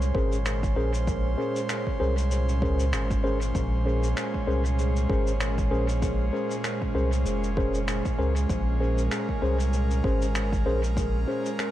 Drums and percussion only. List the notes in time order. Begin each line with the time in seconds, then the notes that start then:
0.02 cabasa
0.15 kick
0.32 cabasa
0.46 finger snap, cabasa
0.63 kick, cabasa
0.94 cabasa
1.07 kick, cabasa
1.56 cabasa
1.69 finger snap, cabasa
1.87 kick
2.18 cabasa
2.31 cabasa
2.49 cabasa
2.62 kick
2.80 cabasa
2.93 finger snap, cabasa
3.11 kick, cabasa
3.42 cabasa
3.55 kick, cabasa
4.03 cabasa
4.17 finger snap, cabasa
4.34 kick
4.65 cabasa
4.79 cabasa
4.96 cabasa
5.10 kick
5.27 cabasa
5.40 finger snap, cabasa
5.58 kick, cabasa
5.89 cabasa
6.02 kick, cabasa
6.51 cabasa
6.64 finger snap, cabasa
6.82 kick
7.13 cabasa
7.26 cabasa
7.44 cabasa
7.57 kick
7.74 cabasa
7.88 finger snap, cabasa
8.05 kick, cabasa
8.36 cabasa
8.50 kick, cabasa
8.98 cabasa
9.11 finger snap, cabasa
9.29 kick
9.60 cabasa
9.73 cabasa
9.91 cabasa
10.04 kick
10.22 cabasa
10.35 finger snap, cabasa
10.53 kick, cabasa
10.84 cabasa
10.97 kick, cabasa
11.46 cabasa
11.59 finger snap, cabasa